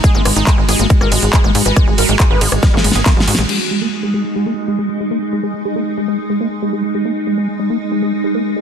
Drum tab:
CC |------------------------------------------------|------------------------------------------------|x-----------------------------------------------|------------------------------------------------|
RD |------x-----------x-----------x-----------x-----|------x-----------x-----------x-----------x-----|------------------------------------------------|------------------------------------------------|
HH |x-----o--x--x-----o--x--x-----o--x--x-----o--x--|x-----o--x--x-----o--x--x-----o--x--x-----o--x--|------------------------------------------------|------------------------------------------------|
CP |------------x-----------------------x-----------|------------x-----------------------x-----------|------------------------------------------------|------------------------------------------------|
SD |------r-----------r--------r-----------r--------|r-----------r--------r--o---o---o---o---o---o---|------------------------------------------------|------------------------------------------------|
BD |o-----------o-----------o-----------o-----------|o-----------o-----------o-----------o-----------|------------------------------------------------|------------------------------------------------|

CC |------------------------------------------------|
RD |------------------------------------------------|
HH |------------------------------------------------|
CP |------------------------------------------------|
SD |------------------------------------------------|
BD |------------------------------------------------|